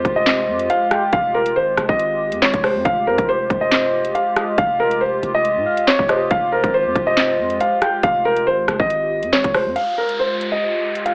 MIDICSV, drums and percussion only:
0, 0, Header, 1, 2, 480
1, 0, Start_track
1, 0, Key_signature, -4, "minor"
1, 0, Tempo, 431655
1, 1253, Time_signature, 4, 2, 24, 8
1, 12391, End_track
2, 0, Start_track
2, 0, Title_t, "Drums"
2, 54, Note_on_c, 9, 36, 104
2, 57, Note_on_c, 9, 42, 77
2, 165, Note_off_c, 9, 36, 0
2, 168, Note_off_c, 9, 42, 0
2, 294, Note_on_c, 9, 38, 121
2, 298, Note_on_c, 9, 42, 83
2, 305, Note_on_c, 9, 39, 96
2, 405, Note_off_c, 9, 38, 0
2, 410, Note_off_c, 9, 42, 0
2, 416, Note_off_c, 9, 39, 0
2, 660, Note_on_c, 9, 42, 79
2, 771, Note_off_c, 9, 42, 0
2, 777, Note_on_c, 9, 42, 81
2, 888, Note_off_c, 9, 42, 0
2, 1013, Note_on_c, 9, 42, 82
2, 1014, Note_on_c, 9, 37, 98
2, 1124, Note_off_c, 9, 42, 0
2, 1125, Note_off_c, 9, 37, 0
2, 1252, Note_on_c, 9, 42, 80
2, 1254, Note_on_c, 9, 36, 109
2, 1364, Note_off_c, 9, 42, 0
2, 1365, Note_off_c, 9, 36, 0
2, 1622, Note_on_c, 9, 42, 80
2, 1733, Note_off_c, 9, 42, 0
2, 1973, Note_on_c, 9, 37, 101
2, 1977, Note_on_c, 9, 42, 73
2, 2085, Note_off_c, 9, 37, 0
2, 2088, Note_off_c, 9, 42, 0
2, 2101, Note_on_c, 9, 36, 104
2, 2212, Note_off_c, 9, 36, 0
2, 2218, Note_on_c, 9, 42, 84
2, 2329, Note_off_c, 9, 42, 0
2, 2580, Note_on_c, 9, 42, 81
2, 2691, Note_off_c, 9, 42, 0
2, 2693, Note_on_c, 9, 38, 117
2, 2693, Note_on_c, 9, 42, 50
2, 2704, Note_on_c, 9, 39, 93
2, 2804, Note_off_c, 9, 38, 0
2, 2804, Note_off_c, 9, 42, 0
2, 2815, Note_off_c, 9, 39, 0
2, 2820, Note_on_c, 9, 36, 104
2, 2820, Note_on_c, 9, 42, 85
2, 2932, Note_off_c, 9, 36, 0
2, 2932, Note_off_c, 9, 42, 0
2, 2933, Note_on_c, 9, 46, 60
2, 2934, Note_on_c, 9, 37, 102
2, 3044, Note_off_c, 9, 46, 0
2, 3045, Note_off_c, 9, 37, 0
2, 3172, Note_on_c, 9, 42, 82
2, 3174, Note_on_c, 9, 36, 113
2, 3284, Note_off_c, 9, 42, 0
2, 3285, Note_off_c, 9, 36, 0
2, 3540, Note_on_c, 9, 36, 96
2, 3542, Note_on_c, 9, 42, 80
2, 3651, Note_off_c, 9, 36, 0
2, 3653, Note_off_c, 9, 42, 0
2, 3894, Note_on_c, 9, 36, 104
2, 3897, Note_on_c, 9, 42, 76
2, 4005, Note_off_c, 9, 36, 0
2, 4008, Note_off_c, 9, 42, 0
2, 4134, Note_on_c, 9, 38, 118
2, 4138, Note_on_c, 9, 42, 86
2, 4145, Note_on_c, 9, 39, 97
2, 4245, Note_off_c, 9, 38, 0
2, 4250, Note_off_c, 9, 42, 0
2, 4256, Note_off_c, 9, 39, 0
2, 4500, Note_on_c, 9, 42, 79
2, 4611, Note_off_c, 9, 42, 0
2, 4616, Note_on_c, 9, 42, 83
2, 4727, Note_off_c, 9, 42, 0
2, 4853, Note_on_c, 9, 37, 104
2, 4853, Note_on_c, 9, 42, 82
2, 4964, Note_off_c, 9, 42, 0
2, 4965, Note_off_c, 9, 37, 0
2, 5092, Note_on_c, 9, 42, 81
2, 5094, Note_on_c, 9, 36, 115
2, 5203, Note_off_c, 9, 42, 0
2, 5205, Note_off_c, 9, 36, 0
2, 5462, Note_on_c, 9, 42, 82
2, 5573, Note_off_c, 9, 42, 0
2, 5817, Note_on_c, 9, 42, 75
2, 5928, Note_off_c, 9, 42, 0
2, 6058, Note_on_c, 9, 42, 81
2, 6170, Note_off_c, 9, 42, 0
2, 6420, Note_on_c, 9, 42, 78
2, 6531, Note_off_c, 9, 42, 0
2, 6534, Note_on_c, 9, 38, 120
2, 6536, Note_on_c, 9, 42, 81
2, 6545, Note_on_c, 9, 39, 97
2, 6645, Note_off_c, 9, 38, 0
2, 6648, Note_off_c, 9, 42, 0
2, 6656, Note_off_c, 9, 39, 0
2, 6661, Note_on_c, 9, 36, 101
2, 6772, Note_off_c, 9, 36, 0
2, 6773, Note_on_c, 9, 42, 83
2, 6774, Note_on_c, 9, 37, 101
2, 6884, Note_off_c, 9, 42, 0
2, 6885, Note_off_c, 9, 37, 0
2, 7013, Note_on_c, 9, 42, 77
2, 7014, Note_on_c, 9, 36, 114
2, 7124, Note_off_c, 9, 42, 0
2, 7125, Note_off_c, 9, 36, 0
2, 7380, Note_on_c, 9, 36, 93
2, 7382, Note_on_c, 9, 42, 81
2, 7491, Note_off_c, 9, 36, 0
2, 7493, Note_off_c, 9, 42, 0
2, 7734, Note_on_c, 9, 36, 105
2, 7737, Note_on_c, 9, 42, 75
2, 7845, Note_off_c, 9, 36, 0
2, 7849, Note_off_c, 9, 42, 0
2, 7974, Note_on_c, 9, 38, 124
2, 7979, Note_on_c, 9, 42, 87
2, 7985, Note_on_c, 9, 39, 95
2, 8085, Note_off_c, 9, 38, 0
2, 8090, Note_off_c, 9, 42, 0
2, 8096, Note_off_c, 9, 39, 0
2, 8340, Note_on_c, 9, 42, 80
2, 8451, Note_off_c, 9, 42, 0
2, 8456, Note_on_c, 9, 42, 78
2, 8568, Note_off_c, 9, 42, 0
2, 8693, Note_on_c, 9, 42, 82
2, 8694, Note_on_c, 9, 37, 98
2, 8804, Note_off_c, 9, 42, 0
2, 8805, Note_off_c, 9, 37, 0
2, 8932, Note_on_c, 9, 42, 80
2, 8934, Note_on_c, 9, 36, 111
2, 9044, Note_off_c, 9, 42, 0
2, 9045, Note_off_c, 9, 36, 0
2, 9302, Note_on_c, 9, 42, 81
2, 9413, Note_off_c, 9, 42, 0
2, 9654, Note_on_c, 9, 37, 106
2, 9657, Note_on_c, 9, 42, 77
2, 9765, Note_off_c, 9, 37, 0
2, 9768, Note_off_c, 9, 42, 0
2, 9781, Note_on_c, 9, 36, 104
2, 9893, Note_off_c, 9, 36, 0
2, 9899, Note_on_c, 9, 42, 84
2, 10010, Note_off_c, 9, 42, 0
2, 10260, Note_on_c, 9, 42, 78
2, 10372, Note_off_c, 9, 42, 0
2, 10374, Note_on_c, 9, 38, 119
2, 10374, Note_on_c, 9, 42, 50
2, 10385, Note_on_c, 9, 39, 93
2, 10485, Note_off_c, 9, 38, 0
2, 10485, Note_off_c, 9, 42, 0
2, 10496, Note_off_c, 9, 39, 0
2, 10500, Note_on_c, 9, 42, 88
2, 10501, Note_on_c, 9, 36, 100
2, 10612, Note_off_c, 9, 36, 0
2, 10612, Note_off_c, 9, 42, 0
2, 10613, Note_on_c, 9, 37, 100
2, 10613, Note_on_c, 9, 46, 60
2, 10724, Note_off_c, 9, 46, 0
2, 10725, Note_off_c, 9, 37, 0
2, 10852, Note_on_c, 9, 42, 77
2, 10964, Note_off_c, 9, 42, 0
2, 11222, Note_on_c, 9, 42, 75
2, 11333, Note_off_c, 9, 42, 0
2, 11577, Note_on_c, 9, 42, 71
2, 11688, Note_off_c, 9, 42, 0
2, 12180, Note_on_c, 9, 42, 69
2, 12291, Note_off_c, 9, 42, 0
2, 12296, Note_on_c, 9, 42, 78
2, 12391, Note_off_c, 9, 42, 0
2, 12391, End_track
0, 0, End_of_file